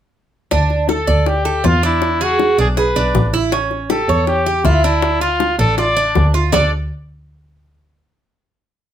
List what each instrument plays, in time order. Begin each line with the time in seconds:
0.51 double bass D2, cuban tres D4, high bongo
0.70 high bongo
0.89 cuban tres A4, trumpet A4, high bongo
1.07 double bass D2, cuban tres D5
1.26 trumpet G4, high bongo
1.45 cuban tres A4, high bongo
1.64 double bass E2, cuban tres F4, trumpet F4, high bongo, low bongo
1.83 cuban tres D4, trumpet E4, high bongo
2.02 high bongo
2.21 trumpet F#4, cuban tres G#4, high bongo
2.39 high bongo
2.58 double bass B1, cuban tres D4, trumpet G#4
2.77 cuban tres G#4, trumpet B4, high bongo
2.96 double bass B1, cuban tres D4, high bongo
3.15 double bass A1, high bongo, low bongo
3.33 cuban tres E4, high bongo
3.52 cuban tres C#4, high bongo
3.71 high bongo
3.90 cuban tres G4, trumpet A4, high bongo
4.08 double bass E2, cuban tres C#5
4.27 trumpet G4, high bongo
4.46 cuban tres G4, high bongo
4.64 double bass D2, cuban tres E4, trumpet F4, high bongo, low bongo
4.84 cuban tres D4, trumpet E4, high bongo
5.02 high bongo
5.21 trumpet F4, cuban tres F4, high bongo
5.40 high bongo
5.58 double bass A1, cuban tres D4, trumpet A4
5.78 cuban tres F4, trumpet D5, high bongo
5.97 cuban tres D4, high bongo
6.15 double bass D2, high bongo, low bongo
6.34 cuban tres F4, high bongo
6.52 double bass D2, cuban tres D4 A4 D5, trumpet D5, low bongo